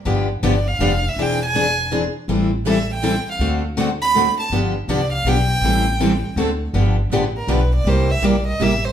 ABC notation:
X:1
M:3/4
L:1/16
Q:"Swing" 1/4=161
K:Gmix
V:1 name="Violin"
z4 d2 f4 e2 | g2 ^g6 z4 | z4 e2 g4 f2 | z4 ^f2 b4 a2 |
z4 d2 f2 g4- | g8 z4 | z6 _B2 =B2 d2 | c2 e2 d2 _e2 =e2 c2 |]
V:2 name="Steel-string acoustic guitar"
[D,F,B,DG]2 z2 [D,F,B,DG] z3 [D,F,B,DG] z3 | [E,^B,D^G]2 z2 [E,B,DG] z3 [E,B,DG] z3 | [E,G,CEA]2 z2 [E,G,CEA] z3 [E,G,CEA] z3 | [D,A,C^FA]2 z2 [D,A,CFA] z3 [D,A,CFA] z3 |
[D,F,B,DG]2 z2 [D,F,B,DG] z3 [D,F,B,DG] z3 | [E,G,CEA]2 z2 [E,G,CEA] z3 [D,A,C^FA] z3 | [D,F,B,DG]2 z2 [D,F,B,DG] z3 [D,F,B,DG] z3 | [C,G,_B,EG]2 z2 [C,G,B,EG] z3 [C,G,B,EG] z3 |]
V:3 name="Steel-string acoustic guitar"
[D,F,B,DG]2 z2 [D,F,B,DG] z3 [D,F,B,DG] z3 | [E,^B,D^Gd]2 z2 [E,B,DGd] z3 [E,B,DGd] z3 | [E,G,CEA]2 z2 [E,G,CEA] z3 [E,G,CEA] z3 | [D,A,C^FA]2 z2 [D,A,CFA] z3 [D,A,CFA] z3 |
[D,F,B,DG]2 z2 [D,F,B,DG] z3 [D,F,B,DG] z3 | [E,G,CEA]2 z2 [E,G,CEA] z3 [D,A,C^FA] z3 | [D,F,B,DG]2 z2 [D,F,B,DG] z3 [D,F,B,DG] z3 | [C,G,_B,EG]2 z2 [C,G,B,EG] z3 [C,G,B,EG] z3 |]
V:4 name="Upright bass" clef=bass
G,,,4 G,,,4 F,,,4 | E,,,12 | A,,,12 | D,,12 |
G,,,4 C,,4 B,,,4 | A,,,8 D,,4 | G,,,4 A,,,4 B,,,4 | C,,4 _B,,,4 A,,,4 |]